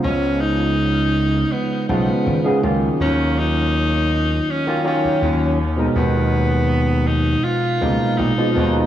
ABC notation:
X:1
M:4/4
L:1/16
Q:1/4=81
K:G#dor
V:1 name="Tenor saxophone"
C2 D6 B,2 B,4 z2 | C2 D6 C2 C4 z2 | B,6 D2 E4 D3 z |]
V:2 name="Tine electric piano" clef=bass
[C,E,G,B,E]8- [C,E,G,B,E]2 [C,E,G,B,E]3 [C,E,G,B,G] [D,F,A,CE]2- | [D,F,A,CE]8- [D,F,A,CE] [D,F,A,CE] [D,F,A,CE]4 z [B,,E,G,DA]- | [B,,E,G,DA]8- [B,,E,G,DA]2 [B,,E,G,A,D]3 [B,,E,G,A,E] [B,,E,G,A,D]2 |]
V:3 name="Slap bass" clef=bass
C,,8 z2 B,,,2 G,,,2 C,,2 | D,,8 z4 D,,4 | D,,8 z2 C,,2 A,,,2 D,,2 |]